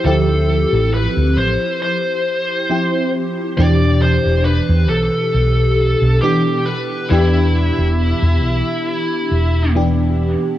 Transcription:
X:1
M:4/4
L:1/16
Q:1/4=68
K:Ephr
V:1 name="Lead electric guitar"
A4 B2 c2 c6 z2 | d2 c2 B2 A6 G2 B2 | E12 z4 |]
V:2 name="FM electric piano"
[F,CEG]12 [F,CEG]4 | [B,,E,DG]12 [E,B,DG]4 | [E,B,DG]12 [E,B,DG]4 |]
V:3 name="Fingered electric bass" clef=bass
D,,3 A,,,2 D,, A,,, z8 z | E,,3 E,,,2 E,, B,,, z B,,,3 B,,, z4 | E,,3 E,,,2 E,, B,,, z3 E,,,4- E,,, z |]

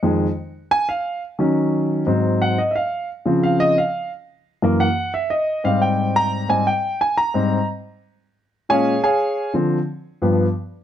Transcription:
X:1
M:4/4
L:1/8
Q:1/4=176
K:Ab
V:1 name="Grand piano"
z4 a f2 z | z6 _g e | [_f=f]2 z2 f e f2 | z4 _g2 _f e- |
e f g2 b2 a g- | g a b3 z3 | z3 [Adfa]2 [Adfa]3 | z8 |]
V:2 name="Grand piano" clef=bass
[F,,E,A,] z6 z | [E,_G,D]4 [A,,G,C]3 z | z3 [D,F,C]3 z2 | z3 [_G,,_F,B,] z4 |
z [A,,G,C]4- [A,,G,C] [A,,G,C] z | z3 [A,,G,C] z4 | z3 [B,,A,D] z4 | [=D,F,C] z3 [G,,F,=B,] z3 |]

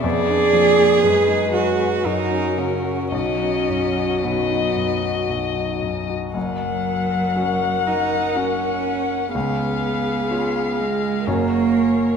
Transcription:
X:1
M:3/4
L:1/16
Q:1/4=60
K:B
V:1 name="Violin"
=d4 B4 A4 | d4 d8 | [K:F#] f12 | e8 c4 |]
V:2 name="Cello"
_A6 F2 D2 C2 | C4 B,4 z4 | [K:F#] F,6 D2 C4 | B,6 G,2 A,4 |]
V:3 name="Grand piano"
=F,, =D =F, _A ^F,, ^D ^F, F F,, C C, F | B,,, D F,, F B,,, D F,, F B,,, D F,, F | [K:F#] [F,,,F,,]4 [CFA]4 [CFA]4 | [C,,C,]4 [CEG]4 [F,,,F,,CFA]4 |]
V:4 name="Viola"
_C2 A,2 G,4 F,4 | F,8- F,2 z2 | [K:F#] A12 | G8 A4 |]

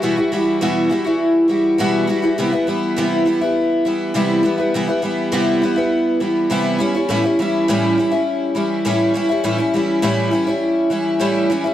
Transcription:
X:1
M:4/4
L:1/16
Q:1/4=102
K:Amix
V:1 name="Twelve-string acoustic guitar" clef=bass
[E,,B,,E,G,EF] [E,G,EF] [E,G,EF]2 [E,,B,,E,G,EF]2 [E,G,EF] [E,G,EF]3 [E,G,EF]2 [E,,B,,E,G,EF]2 [E,G,EF] [E,G,EF] | [=C,E,G,B,E] [G,B,E] [E,G,B,E]2 [C,E,G,B,E]2 [E,G,B,E] [G,B,E]3 [E,G,B,E]2 [C,E,G,B,E]2 [E,G,B,E] [G,B,E] | [=C,E,G,B,E] [G,B,E] [E,G,B,E]2 [C,E,G,B,E]2 [E,G,B,E] [G,B,E]3 [E,G,B,E]2 [C,E,G,B,E]2 [E,G,^CE] [G,CE] | [A,,E,G,CE] [G,CE] [E,G,CE]2 [A,,E,G,CE]2 [E,G,CE] [G,CE]3 [E,G,CE]2 [A,,E,G,CE]2 [E,G,CE] [G,CE] |
[A,,E,G,CE] [G,CE] [E,G,CE]2 [A,,E,G,CE]2 [E,G,CE] [G,CE]3 [E,G,CE]2 [A,,E,G,CE]2 [E,G,CE] [G,CE] |]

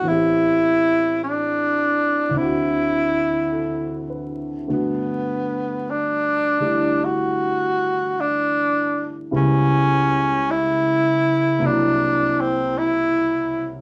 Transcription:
X:1
M:4/4
L:1/16
Q:"Swing" 1/4=52
K:Dmix
V:1 name="Tenor saxophone"
E4 D4 E6 z2 | [K:G] B,4 D4 F4 D3 z | ^C4 E4 D2 =C2 E3 z |]
V:2 name="Grand piano"
z12 A2 B2- | [K:G] B z12 z3 | z16 |]
V:3 name="Grand piano"
[A,,E,B,CG]8 [D,,D,CEF]8 | [K:G] [G,,D,A,B,F]6 [D,G,A,E]8- [D,G,A,E]2 | [^C,,^C,G,B,E]8 [=C,,=C,F,_B,E]8 |]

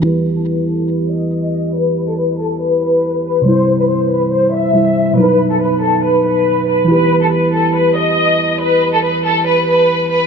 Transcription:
X:1
M:4/4
L:1/16
Q:1/4=140
K:Em
V:1 name="Violin section"
B3 A B2 A2 B2 ^d6 | B3 A B2 A2 B2 B4 B2 | c3 B c2 B2 c2 e6 | B3 A B2 A2 B2 B4 B2 |
B3 A B2 A2 B2 ^d6 | B3 A B2 A2 B2 B4 B2 |]
V:2 name="Synth keys"
[E,EGB]16- | [E,EGB]16 | [C,G,Ec]12 [C,G,Ec]4 | [B,,F,^DB]16 |
[E,EGB]16- | [E,EGB]16 |]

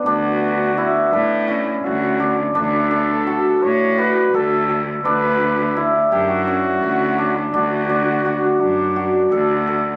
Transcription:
X:1
M:7/8
L:1/16
Q:1/4=84
K:D
V:1 name="Flugelhorn"
F6 D2 E2 F3 z | A6 c2 B2 A3 z | B4 z2 G F6 D | F6 D4 D3 z |]
V:2 name="Hammered dulcimer"
D4 E2 D2 C4 D2 | D2 D2 F4 F2 A2 A2 | D4 E2 D2 C4 D2 | D2 D2 F4 F2 A2 A2 |]
V:3 name="Cello" clef=bass
D,,6 A,,4 D,,4 | D,,6 A,,4 D,,4 | D,,6 F,,4 D,,4 | D,,6 F,,4 D,,4 |]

